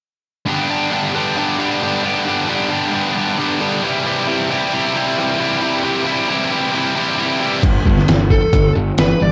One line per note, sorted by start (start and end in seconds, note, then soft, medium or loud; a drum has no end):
0.46 0.68 G2 medium
0.46 0.68 D3 medium
0.46 0.69 G3 medium
0.46 0.69 B3 medium
0.46 0.70 D4 medium
0.46 0.70 G4 loud
0.68 0.90 G2 medium
0.68 0.90 D3 medium
0.68 0.91 G3 medium
0.68 0.92 B3 medium
0.68 0.93 D4 medium
0.68 0.93 G4 medium
0.90 1.12 G2 medium
0.90 1.13 D3 medium
0.90 1.14 G3 medium
0.90 1.14 B3 medium
0.90 1.14 D4 medium
0.90 1.16 G4 medium
1.13 1.35 G2 medium
1.13 1.36 D3 medium
1.13 1.37 G3 medium
1.13 1.37 B3 medium
1.13 1.37 D4 medium
1.13 1.38 G4 medium
1.36 1.57 G2 medium
1.36 1.57 D3 medium
1.36 1.59 G3 medium
1.36 1.58 B3 medium
1.36 1.58 D4 medium
1.36 1.60 G4 medium
1.58 1.79 G2 medium
1.58 1.80 D3 medium
1.58 1.81 G3 medium
1.58 1.81 B3 medium
1.58 1.81 D4 medium
1.58 1.83 G4 medium
1.80 2.01 G2 medium
1.80 2.02 D3 medium
1.80 2.04 G3 medium
1.80 2.03 B3 medium
1.80 2.04 D4 medium
1.80 2.05 G4 medium
2.03 2.24 G2 medium
2.03 2.25 D3 medium
2.03 2.26 G3 medium
2.03 2.27 B3 medium
2.03 2.27 D4 medium
2.03 2.28 G4 medium
2.25 2.46 G2 medium
2.25 2.47 D3 medium
2.25 2.48 G3 medium
2.25 2.48 B3 medium
2.25 2.48 D4 medium
2.25 2.50 G4 medium
2.47 2.68 G2 medium
2.47 2.69 D3 medium
2.47 2.70 G3 medium
2.47 2.70 B3 medium
2.47 2.71 D4 medium
2.47 2.72 G4 medium
2.69 2.91 G2 medium
2.69 2.92 D3 medium
2.69 2.93 G3 medium
2.69 2.93 B3 medium
2.69 2.94 D4 medium
2.69 2.95 G4 medium
2.92 3.14 G2 medium
2.92 3.14 D3 medium
2.92 3.16 G3 medium
2.92 3.16 B3 medium
2.92 3.17 D4 medium
2.92 3.18 G4 medium
3.15 3.36 G2 medium
3.15 3.37 D3 medium
3.15 3.39 G3 medium
3.15 3.38 B3 medium
3.15 3.38 D4 medium
3.15 3.40 G4 medium
3.38 3.58 G2 medium
3.38 3.59 D3 medium
3.38 3.61 G3 medium
3.38 3.60 B3 medium
3.38 3.61 D4 medium
3.38 3.62 G4 medium
3.60 3.81 G2 medium
3.60 3.81 D3 medium
3.60 3.83 G3 medium
3.60 3.82 B3 medium
3.60 3.82 D4 medium
3.60 3.85 G4 medium
3.83 4.05 C3 medium
3.83 4.06 E3 medium
3.83 4.06 G3 medium
3.83 4.06 E4 medium
3.83 4.07 G4 medium
4.05 4.27 C3 medium
4.05 4.27 E3 medium
4.05 4.28 G3 medium
4.05 4.29 E4 medium
4.05 4.29 G4 medium
4.27 4.50 C3 medium
4.27 4.50 E3 medium
4.27 4.51 G3 medium
4.27 4.51 E4 medium
4.27 4.52 G4 medium
4.50 4.72 C3 medium
4.50 4.72 E3 medium
4.50 4.73 G3 medium
4.50 4.74 E4 medium
4.50 4.74 G4 medium
4.72 4.94 C3 medium
4.72 4.94 E3 medium
4.72 4.95 G3 medium
4.72 4.95 E4 medium
4.72 4.96 G4 medium
4.95 5.16 C3 medium
4.95 5.16 E3 medium
4.95 5.18 G3 medium
4.95 5.18 E4 medium
4.95 5.19 G4 medium
5.17 5.38 C3 medium
5.17 5.38 E3 medium
5.17 5.40 G3 medium
5.17 5.39 E4 medium
5.17 5.41 G4 medium
5.39 5.60 C3 medium
5.39 5.60 E3 medium
5.39 5.61 G3 medium
5.39 5.61 E4 medium
5.39 5.63 G4 medium
5.61 5.82 C3 medium
5.61 5.83 E3 medium
5.61 5.83 G3 medium
5.61 5.83 E4 medium
5.61 5.84 G4 medium
5.83 6.04 C3 medium
5.83 6.05 E3 medium
5.83 6.05 G3 medium
5.83 6.06 E4 medium
5.83 6.07 G4 medium
6.06 6.27 C3 medium
6.06 6.28 E3 medium
6.06 6.28 G3 medium
6.06 6.29 E4 medium
6.06 6.30 G4 medium
6.28 6.49 C3 medium
6.28 6.50 E3 medium
6.28 6.51 G3 medium
6.28 6.52 E4 medium
6.28 6.52 G4 medium
6.51 6.72 C3 medium
6.51 6.72 E3 medium
6.51 6.73 G3 medium
6.51 6.73 E4 medium
6.51 6.74 G4 medium
6.73 6.94 C3 medium
6.73 6.94 E3 medium
6.73 6.95 G3 medium
6.73 6.96 E4 medium
6.73 6.96 G4 medium
6.95 7.17 C3 medium
6.95 7.18 E3 medium
6.95 7.18 G3 medium
6.95 7.19 E4 medium
6.95 7.19 G4 medium
7.18 7.40 C3 medium
7.18 7.40 E3 medium
7.18 7.41 G3 medium
7.18 7.41 E4 medium
7.18 7.42 G4 medium
7.41 7.62 C3 medium
7.41 7.62 E3 medium
7.41 7.62 G3 medium
7.41 7.62 E4 medium
7.41 7.63 G4 medium
7.63 7.78 G1 medium
7.63 7.83 G2 medium
7.63 7.84 D3 medium
7.63 kick medium
7.63 closed hi-hat soft
7.63 crash medium
7.86 8.00 G1 medium
7.86 8.06 G2 medium
7.86 8.06 D3 medium
7.86 kick medium
7.98 snare soft
8.08 8.38 G1 medium
8.08 8.28 G2 medium
8.08 8.29 E3 medium
8.08 snare medium
8.08 closed hi-hat medium
8.30 8.51 G2 medium
8.30 8.51 E3 medium
8.30 8.72 A4 medium
8.30 kick medium
8.53 8.67 G1 medium
8.53 8.73 G2 medium
8.53 8.73 D3 medium
8.53 kick loud
8.53 closed hi-hat medium
8.75 8.91 G1 medium
8.75 8.95 G2 medium
8.75 8.95 D3 medium
8.97 9.13 G1 medium
8.97 9.17 G2 medium
8.97 9.18 E3 medium
8.97 9.21 B4 medium
8.97 snare medium
8.97 closed hi-hat medium
9.20 9.32 G1 medium
9.20 9.32 G2 medium
9.20 9.32 E3 medium
9.20 9.32 D5 medium